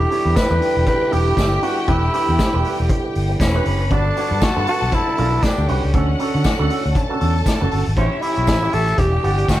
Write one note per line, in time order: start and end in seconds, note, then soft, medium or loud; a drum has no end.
0.00 3.87 D3 medium
0.00 3.87 G3 medium
0.00 5.91 B3 medium
0.00 3.88 E4 medium
0.00 0.38 G4 medium
0.00 3.37 G4 medium
0.00 3.37 G5 medium
0.00 muted clean electric guitar stroke soft
0.11 0.23 D4 medium
0.11 0.23 G4 medium
0.11 0.23 C#5 medium
0.11 open hi-hat medium
0.25 0.34 E2 loud
0.25 0.35 D4 soft
0.25 0.35 G4 soft
0.25 0.34 B4 medium
0.36 0.87 B4 loud
0.36 muted clean electric guitar stroke soft
0.36 kick loud
0.36 snare loud
0.36 closed hi-hat medium
0.36 tambourine loud
0.50 0.59 E2 medium
0.50 0.60 D4 medium
0.50 0.61 G4 medium
0.50 0.61 B4 medium
0.61 0.74 D4 medium
0.61 0.74 G4 medium
0.61 0.74 B4 medium
0.61 open hi-hat medium
0.76 0.85 E1 medium
0.76 muted clean electric guitar stroke soft
0.86 1.15 B4 loud
0.86 muted clean electric guitar stroke soft
0.86 kick loud
0.86 closed hi-hat medium
1.01 muted clean electric guitar stroke soft
1.11 1.32 E1 medium
1.11 1.26 D4 medium
1.11 1.25 G4 medium
1.11 1.65 G4 loud
1.11 1.25 B4 medium
1.11 open hi-hat medium
1.26 1.36 D4 medium
1.26 1.36 G4 medium
1.26 1.36 B4 medium
1.37 1.57 G1 medium
1.37 kick loud
1.37 snare medium
1.37 closed hi-hat medium
1.37 tambourine loud
1.52 muted clean electric guitar stroke soft
1.62 1.78 D4 medium
1.62 1.90 F#4 medium
1.62 1.77 G4 medium
1.62 1.76 B4 medium
1.62 open hi-hat medium
1.77 muted clean electric guitar stroke soft
1.88 2.07 E1 loud
1.88 2.03 D4 medium
1.88 2.90 E4 medium
1.88 2.02 G4 medium
1.88 2.01 B4 medium
1.88 kick loud
1.88 closed hi-hat medium
2.02 muted clean electric guitar stroke medium
2.13 2.26 D4 medium
2.13 2.26 G4 medium
2.13 2.26 B4 medium
2.13 open hi-hat medium
2.28 2.37 E2 medium
2.28 2.38 D4 soft
2.28 2.38 G4 soft
2.28 2.38 B4 medium
2.39 muted clean electric guitar stroke soft
2.39 kick loud
2.39 snare loud
2.39 closed hi-hat medium
2.39 tambourine loud
2.53 2.62 E1 medium
2.53 2.64 D4 medium
2.53 2.64 G4 medium
2.53 2.65 B4 medium
2.64 2.77 D4 medium
2.64 2.77 G4 medium
2.64 2.77 B4 medium
2.64 open hi-hat medium
2.78 2.88 E1 medium
2.78 muted clean electric guitar stroke soft
2.89 muted clean electric guitar stroke soft
2.89 kick loud
2.89 closed hi-hat medium
3.04 muted clean electric guitar stroke soft
3.15 3.35 G1 medium
3.15 open hi-hat medium
3.29 muted clean electric guitar stroke medium
3.40 3.59 E1 medium
3.40 3.94 C#4 medium
3.40 3.90 B4 medium
3.40 3.90 B5 medium
3.40 muted clean electric guitar stroke soft
3.40 kick loud
3.40 snare loud
3.40 closed hi-hat medium
3.40 tambourine loud
3.55 3.64 D4 medium
3.55 3.65 G4 medium
3.55 3.66 B4 medium
3.65 3.91 F#1 medium
3.65 3.78 D4 medium
3.65 3.78 G4 medium
3.65 3.78 B4 medium
3.65 open hi-hat medium
3.81 muted clean electric guitar stroke soft
3.90 4.10 G1 loud
3.90 7.79 D3 medium
3.90 5.93 G3 medium
3.90 4.06 D4 medium
3.90 4.44 D4 loud
3.90 4.05 F#4 medium
3.90 5.40 A4 medium
3.90 4.04 B4 medium
3.90 5.41 A5 medium
3.90 kick loud
3.90 closed hi-hat medium
4.06 muted clean electric guitar stroke medium
4.16 4.29 D4 medium
4.16 4.29 F#4 medium
4.16 4.29 C#5 medium
4.16 open hi-hat medium
4.31 4.39 G2 medium
4.31 4.41 D4 soft
4.31 4.41 F#4 soft
4.31 4.40 B4 soft
4.42 4.68 F#4 loud
4.42 muted clean electric guitar stroke soft
4.42 kick loud
4.42 snare loud
4.42 closed hi-hat medium
4.42 tambourine medium
4.56 4.65 G2 medium
4.56 4.66 D4 medium
4.56 4.67 F#4 medium
4.56 4.67 B4 medium
4.67 4.79 D4 medium
4.67 4.80 F#4 medium
4.67 4.96 F#4 loud
4.67 4.80 B4 medium
4.67 open hi-hat medium
4.82 4.90 B1 medium
4.82 muted clean electric guitar stroke soft
4.92 5.45 E4 loud
4.92 muted clean electric guitar stroke soft
4.92 kick loud
4.92 closed hi-hat medium
5.07 muted clean electric guitar stroke soft
5.18 5.38 B1 medium
5.18 5.32 D4 medium
5.18 5.31 F#4 medium
5.18 5.31 B4 medium
5.18 open hi-hat medium
5.32 5.42 D4 medium
5.32 5.42 F#4 medium
5.32 5.41 B4 medium
5.42 5.69 D4 medium
5.42 5.93 G4 medium
5.42 5.93 G5 medium
5.42 muted clean electric guitar stroke soft
5.42 kick loud
5.42 snare medium
5.42 closed hi-hat medium
5.42 tambourine medium
5.58 5.66 D2 medium
5.58 muted clean electric guitar stroke soft
5.68 5.80 C2 medium
5.68 7.46 C#4 medium
5.68 5.84 D4 medium
5.68 5.83 F#4 medium
5.68 5.82 B4 medium
5.68 open hi-hat medium
5.83 5.92 C#2 medium
5.83 muted clean electric guitar stroke soft
5.94 6.13 D2 loud
5.94 7.79 A3 medium
5.94 6.09 C#4 medium
5.94 7.79 C#4 medium
5.94 6.94 F#4 medium
5.94 6.08 F#4 medium
5.94 6.07 A4 medium
5.94 6.94 F#5 medium
5.94 kick loud
5.94 closed hi-hat medium
6.08 muted clean electric guitar stroke soft
6.19 6.31 C#4 medium
6.19 6.32 F#4 medium
6.19 6.32 A4 medium
6.19 open hi-hat medium
6.34 6.43 D3 medium
6.34 6.44 C#4 soft
6.34 6.43 F#4 medium
6.34 6.43 A4 medium
6.44 muted clean electric guitar stroke soft
6.44 kick loud
6.44 snare loud
6.44 closed hi-hat medium
6.44 tambourine medium
6.59 6.68 D2 medium
6.59 6.69 C#4 medium
6.59 6.69 F#4 medium
6.59 6.70 A4 medium
6.70 6.82 C#4 medium
6.70 6.82 F#4 medium
6.70 6.83 A4 medium
6.70 open hi-hat medium
6.84 6.94 D2 medium
6.84 muted clean electric guitar stroke soft
6.95 7.95 A4 medium
6.95 7.95 A5 medium
6.95 muted clean electric guitar stroke soft
6.95 kick loud
6.95 closed hi-hat medium
7.09 7.19 C#4 soft
7.09 7.20 F#4 medium
7.09 7.19 A4 medium
7.20 7.41 E2 medium
7.20 7.36 C#4 medium
7.20 7.35 F#4 medium
7.20 7.34 A4 medium
7.20 open hi-hat medium
7.35 muted clean electric guitar stroke soft
7.46 muted clean electric guitar stroke soft
7.46 kick loud
7.46 snare medium
7.46 closed hi-hat medium
7.46 tambourine loud
7.61 7.70 F#1 medium
7.61 7.70 C#4 medium
7.61 7.71 F#4 medium
7.61 7.71 A4 medium
7.71 7.83 G1 medium
7.71 7.84 C#4 medium
7.71 7.84 F#4 medium
7.71 7.84 A4 medium
7.71 open hi-hat medium
7.86 7.95 G#1 medium
7.86 muted clean electric guitar stroke soft
7.96 8.08 A1 loud
7.96 9.60 E3 medium
7.96 8.97 A3 medium
7.96 8.97 C#4 medium
7.96 8.23 C#4 medium
7.96 8.96 E4 medium
7.96 8.18 E4 medium
7.96 8.97 G4 medium
7.96 8.10 G4 medium
7.96 8.10 C#5 medium
7.96 8.96 E5 medium
7.96 kick loud
7.96 closed hi-hat medium
8.11 muted clean electric guitar stroke soft
8.22 8.34 E4 medium
8.22 8.75 E4 loud
8.22 8.35 G4 medium
8.22 8.35 E5 medium
8.22 open hi-hat medium
8.36 8.48 B1 medium
8.36 8.46 E4 soft
8.36 8.46 G4 soft
8.36 8.46 C#5 medium
8.36 closed hi-hat soft
8.47 8.67 A1 medium
8.47 muted clean electric guitar stroke soft
8.47 kick loud
8.47 snare loud
8.47 closed hi-hat medium
8.47 tambourine medium
8.62 8.72 E4 soft
8.62 8.72 G4 medium
8.62 8.73 C#5 medium
8.73 8.93 A1 medium
8.73 8.85 E4 medium
8.73 8.85 G4 medium
8.73 9.00 A4 loud
8.73 8.86 C#5 medium
8.73 open hi-hat medium
8.87 muted clean electric guitar stroke soft
8.87 closed hi-hat soft
8.98 9.18 E1 medium
8.98 9.60 G3 medium
8.98 9.60 D4 medium
8.98 9.60 G4 medium
8.98 9.51 G4 loud
8.98 9.60 G5 medium
8.98 muted clean electric guitar stroke soft
8.98 kick loud
8.98 closed hi-hat medium
9.12 muted clean electric guitar stroke soft
9.23 9.43 G1 medium
9.23 9.37 G4 medium
9.23 9.37 D5 medium
9.23 9.36 F#5 medium
9.23 open hi-hat medium
9.37 9.47 G4 medium
9.37 9.48 D5 medium
9.37 9.47 F#5 medium
9.37 closed hi-hat soft
9.48 9.60 G1 medium
9.48 9.60 F#4 medium
9.48 muted clean electric guitar stroke soft
9.48 kick loud
9.48 snare medium
9.48 closed hi-hat medium
9.48 tambourine medium